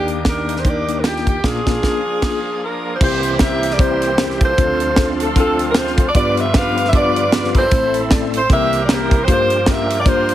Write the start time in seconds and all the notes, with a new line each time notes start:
Already playing: D#2 D#3 A#3 D4 D#4 G4
0.08 closed hi-hat
0.25 A#3 D4 D#4 G4 A#4, kick, snare, closed hi-hat
0.49 closed hi-hat
0.56 C5, snare
0.65 A#3 D4 D#4 G4 A#4 D5, kick, closed hi-hat
0.88 A#3 D4 D#4 A#4, closed hi-hat
0.98 A#4
1.04 A#3 D4 D#4 F4 G4, snare, closed hi-hat
1.16 snare
1.27 G4, kick, closed hi-hat
1.44 A#1 A#2 F3 A#3 D4 F4 G#4, kick, snare, crash
1.66 A#1 A#2 A#3 D4 F4 G#4, kick, snare
1.82 A#3 D4 F4 G#4, kick, snare
2.22 A#3 D4 F4 G#4, kick, snare, crash
2.63 D4 F4 A#4
2.94 C5
3.01 C2 C3 E3 G3 A#3 C4 E4 F4 G4 A#4 C5, kick, crash
3.06 G4
3.23 closed hi-hat
3.39 C4 E4 G4 A#4 C5 E5, kick, snare, closed hi-hat
3.63 closed hi-hat
3.71 D5, snare
3.78 C4 E4 G4 A#4 C5 D5, kick, closed hi-hat
4.02 closed hi-hat
4.18 C4 D4 G4 A#4 C5, snare, closed hi-hat
4.24 E4
4.30 snare
4.41 F4 A4 C5, kick, closed hi-hat
4.57 D2 D3 F3 A3 C4 D4 E4 F4 A4 C5, kick, closed hi-hat
4.62 F4
4.80 closed hi-hat
4.96 C4 D4 F4 A4 C5, kick, snare, closed hi-hat
5.20 A4, closed hi-hat
5.36 C4 D4 E4 F4 A4 C5, kick, closed hi-hat
5.41 F4
5.59 closed hi-hat
5.70 A#4
5.75 C4 D4 F4 A4 C5, snare, closed hi-hat
5.87 snare
5.98 kick, closed hi-hat
6.08 D5
6.14 G2 D3 F3 G3 B3 D4 E4 F4 G4 B4 D5, kick, closed hi-hat
6.19 F4
6.37 E5, closed hi-hat
6.54 B3 D4 F4 G4 A#4 B4 D5 F5, kick, snare, closed hi-hat
6.59 B4
6.77 closed hi-hat
6.85 E5, snare
6.93 B3 D4 F4 G4 A4 B4 D5, kick, closed hi-hat
6.98 B4
7.16 closed hi-hat
7.32 B3 D4 F4 G4 B4, snare, closed hi-hat
7.44 snare
7.55 E4 A4 C5, kick, closed hi-hat
7.71 A1 A2 A3 C4 E4 A4 C5, kick, closed hi-hat
7.94 closed hi-hat
8.10 A3 C4 E4 A4 D5, kick, snare, closed hi-hat
8.33 C5, closed hi-hat
8.49 C2 C3 E3 G3 A#3 C4 E4 F#4 G4 A4 A#4 E5, kick, closed hi-hat
8.55 G4 A#4
8.73 closed hi-hat
8.84 D5
8.88 A#3 C4 E4 G4 A#4, snare, closed hi-hat
8.92 A#4
9.11 kick, closed hi-hat
9.23 C5
9.27 G2 F3 G3 A3 A#3 D4 F4 G4 A4, kick, closed hi-hat
9.31 A#3 A#4 C5
9.50 closed hi-hat
9.66 A#3 D4 F4 G4 A#4 E5, kick, snare, closed hi-hat
9.90 closed hi-hat
9.99 D5
10.05 A#3 D4 F4 G4 C5, kick, closed hi-hat
10.29 closed hi-hat